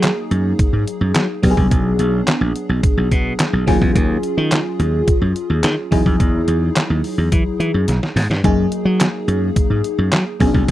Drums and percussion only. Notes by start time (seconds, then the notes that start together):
0.03 snare, clap, closed hi-hat
0.31 closed hi-hat
0.59 kick, closed hi-hat
0.88 closed hi-hat
1.15 snare, clap, closed hi-hat
1.43 kick, open hi-hat
1.57 kick
1.71 kick, closed hi-hat
1.99 closed hi-hat
2.27 snare, clap, closed hi-hat
2.56 closed hi-hat
2.83 kick, closed hi-hat
3.11 kick, closed hi-hat
3.39 snare, clap, closed hi-hat
3.68 kick, open hi-hat
3.81 kick
3.96 kick, closed hi-hat
4.23 closed hi-hat
4.52 snare, clap, closed hi-hat
4.80 closed hi-hat
5.08 kick, closed hi-hat
5.36 closed hi-hat
5.63 snare, clap, closed hi-hat
5.92 kick, open hi-hat
6.06 kick
6.20 kick, closed hi-hat
6.48 closed hi-hat
6.76 snare, clap, closed hi-hat
7.04 open hi-hat
7.32 kick, closed hi-hat
7.60 closed hi-hat
7.88 snare, closed hi-hat
8.03 snare
8.16 snare, open hi-hat
8.31 snare
8.44 kick, closed hi-hat
8.72 closed hi-hat
9.00 snare, clap, closed hi-hat
9.28 closed hi-hat
9.56 kick, closed hi-hat
9.84 closed hi-hat
10.12 snare, clap, closed hi-hat
10.40 kick, open hi-hat
10.54 kick